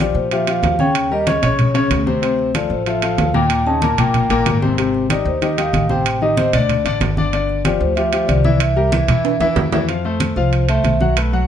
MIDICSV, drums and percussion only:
0, 0, Header, 1, 2, 480
1, 0, Start_track
1, 0, Key_signature, -1, "major"
1, 0, Tempo, 319149
1, 1432, Time_signature, 4, 2, 24, 8
1, 17251, End_track
2, 0, Start_track
2, 0, Title_t, "Drums"
2, 0, Note_on_c, 9, 65, 85
2, 149, Note_off_c, 9, 65, 0
2, 228, Note_on_c, 9, 63, 29
2, 378, Note_off_c, 9, 63, 0
2, 471, Note_on_c, 9, 63, 34
2, 473, Note_on_c, 9, 65, 70
2, 621, Note_off_c, 9, 63, 0
2, 623, Note_off_c, 9, 65, 0
2, 709, Note_on_c, 9, 63, 34
2, 713, Note_on_c, 9, 65, 88
2, 860, Note_off_c, 9, 63, 0
2, 863, Note_off_c, 9, 65, 0
2, 948, Note_on_c, 9, 63, 76
2, 956, Note_on_c, 9, 65, 64
2, 956, Note_on_c, 9, 66, 73
2, 1098, Note_off_c, 9, 63, 0
2, 1106, Note_off_c, 9, 65, 0
2, 1106, Note_off_c, 9, 66, 0
2, 1186, Note_on_c, 9, 63, 74
2, 1337, Note_off_c, 9, 63, 0
2, 1430, Note_on_c, 9, 65, 96
2, 1433, Note_on_c, 9, 63, 33
2, 1581, Note_off_c, 9, 65, 0
2, 1584, Note_off_c, 9, 63, 0
2, 1672, Note_on_c, 9, 63, 31
2, 1822, Note_off_c, 9, 63, 0
2, 1907, Note_on_c, 9, 65, 72
2, 1910, Note_on_c, 9, 63, 88
2, 2058, Note_off_c, 9, 65, 0
2, 2061, Note_off_c, 9, 63, 0
2, 2148, Note_on_c, 9, 65, 86
2, 2153, Note_on_c, 9, 63, 28
2, 2153, Note_on_c, 9, 64, 68
2, 2299, Note_off_c, 9, 65, 0
2, 2303, Note_off_c, 9, 63, 0
2, 2303, Note_off_c, 9, 64, 0
2, 2388, Note_on_c, 9, 65, 60
2, 2395, Note_on_c, 9, 63, 33
2, 2395, Note_on_c, 9, 64, 70
2, 2539, Note_off_c, 9, 65, 0
2, 2545, Note_off_c, 9, 63, 0
2, 2545, Note_off_c, 9, 64, 0
2, 2631, Note_on_c, 9, 63, 35
2, 2631, Note_on_c, 9, 65, 66
2, 2781, Note_off_c, 9, 65, 0
2, 2782, Note_off_c, 9, 63, 0
2, 2869, Note_on_c, 9, 65, 95
2, 2869, Note_on_c, 9, 66, 67
2, 2870, Note_on_c, 9, 63, 78
2, 3020, Note_off_c, 9, 63, 0
2, 3020, Note_off_c, 9, 65, 0
2, 3020, Note_off_c, 9, 66, 0
2, 3114, Note_on_c, 9, 63, 77
2, 3264, Note_off_c, 9, 63, 0
2, 3352, Note_on_c, 9, 63, 34
2, 3353, Note_on_c, 9, 65, 70
2, 3503, Note_off_c, 9, 63, 0
2, 3503, Note_off_c, 9, 65, 0
2, 3588, Note_on_c, 9, 63, 29
2, 3739, Note_off_c, 9, 63, 0
2, 3830, Note_on_c, 9, 63, 94
2, 3833, Note_on_c, 9, 65, 92
2, 3980, Note_off_c, 9, 63, 0
2, 3983, Note_off_c, 9, 65, 0
2, 4070, Note_on_c, 9, 63, 33
2, 4221, Note_off_c, 9, 63, 0
2, 4308, Note_on_c, 9, 65, 63
2, 4312, Note_on_c, 9, 63, 37
2, 4458, Note_off_c, 9, 65, 0
2, 4463, Note_off_c, 9, 63, 0
2, 4547, Note_on_c, 9, 65, 89
2, 4551, Note_on_c, 9, 63, 35
2, 4697, Note_off_c, 9, 65, 0
2, 4702, Note_off_c, 9, 63, 0
2, 4787, Note_on_c, 9, 63, 83
2, 4789, Note_on_c, 9, 65, 67
2, 4789, Note_on_c, 9, 66, 77
2, 4938, Note_off_c, 9, 63, 0
2, 4939, Note_off_c, 9, 65, 0
2, 4939, Note_off_c, 9, 66, 0
2, 5026, Note_on_c, 9, 63, 79
2, 5176, Note_off_c, 9, 63, 0
2, 5262, Note_on_c, 9, 65, 96
2, 5266, Note_on_c, 9, 63, 34
2, 5412, Note_off_c, 9, 65, 0
2, 5416, Note_off_c, 9, 63, 0
2, 5507, Note_on_c, 9, 63, 29
2, 5657, Note_off_c, 9, 63, 0
2, 5744, Note_on_c, 9, 63, 82
2, 5748, Note_on_c, 9, 65, 61
2, 5894, Note_off_c, 9, 63, 0
2, 5898, Note_off_c, 9, 65, 0
2, 5987, Note_on_c, 9, 63, 32
2, 5987, Note_on_c, 9, 64, 78
2, 5990, Note_on_c, 9, 65, 90
2, 6138, Note_off_c, 9, 63, 0
2, 6138, Note_off_c, 9, 64, 0
2, 6140, Note_off_c, 9, 65, 0
2, 6230, Note_on_c, 9, 65, 61
2, 6234, Note_on_c, 9, 63, 35
2, 6234, Note_on_c, 9, 64, 72
2, 6380, Note_off_c, 9, 65, 0
2, 6384, Note_off_c, 9, 63, 0
2, 6384, Note_off_c, 9, 64, 0
2, 6471, Note_on_c, 9, 65, 71
2, 6472, Note_on_c, 9, 63, 35
2, 6621, Note_off_c, 9, 65, 0
2, 6622, Note_off_c, 9, 63, 0
2, 6710, Note_on_c, 9, 65, 97
2, 6710, Note_on_c, 9, 66, 65
2, 6713, Note_on_c, 9, 63, 81
2, 6860, Note_off_c, 9, 65, 0
2, 6860, Note_off_c, 9, 66, 0
2, 6863, Note_off_c, 9, 63, 0
2, 6951, Note_on_c, 9, 63, 79
2, 7102, Note_off_c, 9, 63, 0
2, 7193, Note_on_c, 9, 65, 74
2, 7343, Note_off_c, 9, 65, 0
2, 7434, Note_on_c, 9, 63, 34
2, 7585, Note_off_c, 9, 63, 0
2, 7671, Note_on_c, 9, 63, 90
2, 7674, Note_on_c, 9, 65, 91
2, 7821, Note_off_c, 9, 63, 0
2, 7825, Note_off_c, 9, 65, 0
2, 7912, Note_on_c, 9, 63, 33
2, 8062, Note_off_c, 9, 63, 0
2, 8146, Note_on_c, 9, 63, 35
2, 8155, Note_on_c, 9, 65, 69
2, 8297, Note_off_c, 9, 63, 0
2, 8305, Note_off_c, 9, 65, 0
2, 8389, Note_on_c, 9, 63, 34
2, 8395, Note_on_c, 9, 65, 88
2, 8539, Note_off_c, 9, 63, 0
2, 8546, Note_off_c, 9, 65, 0
2, 8625, Note_on_c, 9, 63, 76
2, 8633, Note_on_c, 9, 65, 71
2, 8776, Note_off_c, 9, 63, 0
2, 8783, Note_off_c, 9, 65, 0
2, 8865, Note_on_c, 9, 63, 85
2, 9016, Note_off_c, 9, 63, 0
2, 9109, Note_on_c, 9, 63, 32
2, 9113, Note_on_c, 9, 65, 91
2, 9260, Note_off_c, 9, 63, 0
2, 9263, Note_off_c, 9, 65, 0
2, 9347, Note_on_c, 9, 63, 34
2, 9498, Note_off_c, 9, 63, 0
2, 9586, Note_on_c, 9, 63, 90
2, 9589, Note_on_c, 9, 65, 72
2, 9736, Note_off_c, 9, 63, 0
2, 9739, Note_off_c, 9, 65, 0
2, 9827, Note_on_c, 9, 65, 89
2, 9828, Note_on_c, 9, 63, 32
2, 9828, Note_on_c, 9, 64, 70
2, 9977, Note_off_c, 9, 65, 0
2, 9978, Note_off_c, 9, 63, 0
2, 9978, Note_off_c, 9, 64, 0
2, 10065, Note_on_c, 9, 63, 33
2, 10065, Note_on_c, 9, 64, 73
2, 10069, Note_on_c, 9, 65, 74
2, 10216, Note_off_c, 9, 63, 0
2, 10216, Note_off_c, 9, 64, 0
2, 10220, Note_off_c, 9, 65, 0
2, 10301, Note_on_c, 9, 63, 32
2, 10312, Note_on_c, 9, 65, 71
2, 10452, Note_off_c, 9, 63, 0
2, 10462, Note_off_c, 9, 65, 0
2, 10539, Note_on_c, 9, 63, 80
2, 10546, Note_on_c, 9, 65, 88
2, 10546, Note_on_c, 9, 66, 76
2, 10689, Note_off_c, 9, 63, 0
2, 10696, Note_off_c, 9, 65, 0
2, 10696, Note_off_c, 9, 66, 0
2, 10785, Note_on_c, 9, 63, 82
2, 10936, Note_off_c, 9, 63, 0
2, 11022, Note_on_c, 9, 63, 37
2, 11027, Note_on_c, 9, 65, 71
2, 11173, Note_off_c, 9, 63, 0
2, 11177, Note_off_c, 9, 65, 0
2, 11268, Note_on_c, 9, 63, 33
2, 11418, Note_off_c, 9, 63, 0
2, 11502, Note_on_c, 9, 63, 93
2, 11507, Note_on_c, 9, 65, 86
2, 11653, Note_off_c, 9, 63, 0
2, 11658, Note_off_c, 9, 65, 0
2, 11744, Note_on_c, 9, 63, 31
2, 11895, Note_off_c, 9, 63, 0
2, 11983, Note_on_c, 9, 63, 32
2, 11988, Note_on_c, 9, 65, 61
2, 12134, Note_off_c, 9, 63, 0
2, 12139, Note_off_c, 9, 65, 0
2, 12221, Note_on_c, 9, 65, 87
2, 12223, Note_on_c, 9, 63, 33
2, 12372, Note_off_c, 9, 65, 0
2, 12374, Note_off_c, 9, 63, 0
2, 12465, Note_on_c, 9, 63, 83
2, 12467, Note_on_c, 9, 65, 71
2, 12615, Note_off_c, 9, 63, 0
2, 12618, Note_off_c, 9, 65, 0
2, 12700, Note_on_c, 9, 63, 79
2, 12851, Note_off_c, 9, 63, 0
2, 12939, Note_on_c, 9, 65, 93
2, 12940, Note_on_c, 9, 63, 38
2, 13089, Note_off_c, 9, 65, 0
2, 13091, Note_off_c, 9, 63, 0
2, 13181, Note_on_c, 9, 63, 34
2, 13331, Note_off_c, 9, 63, 0
2, 13419, Note_on_c, 9, 63, 100
2, 13427, Note_on_c, 9, 65, 68
2, 13569, Note_off_c, 9, 63, 0
2, 13577, Note_off_c, 9, 65, 0
2, 13660, Note_on_c, 9, 63, 33
2, 13660, Note_on_c, 9, 64, 83
2, 13663, Note_on_c, 9, 65, 87
2, 13810, Note_off_c, 9, 63, 0
2, 13810, Note_off_c, 9, 64, 0
2, 13814, Note_off_c, 9, 65, 0
2, 13900, Note_on_c, 9, 63, 37
2, 13909, Note_on_c, 9, 65, 68
2, 14050, Note_off_c, 9, 63, 0
2, 14059, Note_off_c, 9, 65, 0
2, 14140, Note_on_c, 9, 63, 36
2, 14146, Note_on_c, 9, 65, 67
2, 14290, Note_off_c, 9, 63, 0
2, 14296, Note_off_c, 9, 65, 0
2, 14380, Note_on_c, 9, 63, 77
2, 14381, Note_on_c, 9, 66, 105
2, 14530, Note_off_c, 9, 63, 0
2, 14531, Note_off_c, 9, 66, 0
2, 14622, Note_on_c, 9, 63, 80
2, 14626, Note_on_c, 9, 66, 106
2, 14773, Note_off_c, 9, 63, 0
2, 14776, Note_off_c, 9, 66, 0
2, 14866, Note_on_c, 9, 63, 33
2, 14869, Note_on_c, 9, 65, 67
2, 15017, Note_off_c, 9, 63, 0
2, 15019, Note_off_c, 9, 65, 0
2, 15106, Note_on_c, 9, 63, 33
2, 15256, Note_off_c, 9, 63, 0
2, 15344, Note_on_c, 9, 63, 83
2, 15348, Note_on_c, 9, 65, 86
2, 15495, Note_off_c, 9, 63, 0
2, 15498, Note_off_c, 9, 65, 0
2, 15585, Note_on_c, 9, 63, 30
2, 15736, Note_off_c, 9, 63, 0
2, 15829, Note_on_c, 9, 63, 32
2, 15833, Note_on_c, 9, 65, 64
2, 15979, Note_off_c, 9, 63, 0
2, 15983, Note_off_c, 9, 65, 0
2, 16071, Note_on_c, 9, 65, 86
2, 16074, Note_on_c, 9, 63, 33
2, 16222, Note_off_c, 9, 65, 0
2, 16225, Note_off_c, 9, 63, 0
2, 16310, Note_on_c, 9, 63, 79
2, 16312, Note_on_c, 9, 65, 66
2, 16460, Note_off_c, 9, 63, 0
2, 16462, Note_off_c, 9, 65, 0
2, 16549, Note_on_c, 9, 63, 79
2, 16700, Note_off_c, 9, 63, 0
2, 16793, Note_on_c, 9, 63, 34
2, 16797, Note_on_c, 9, 65, 100
2, 16944, Note_off_c, 9, 63, 0
2, 16947, Note_off_c, 9, 65, 0
2, 17034, Note_on_c, 9, 63, 35
2, 17185, Note_off_c, 9, 63, 0
2, 17251, End_track
0, 0, End_of_file